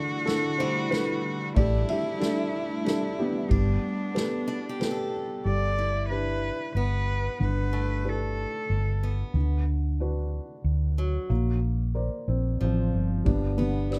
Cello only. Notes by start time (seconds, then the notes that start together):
Already playing: F#4
1.57 E4
3.51 D4
5.46 D5
6.09 B4
6.75 B4
7.41 B4
8.08 A4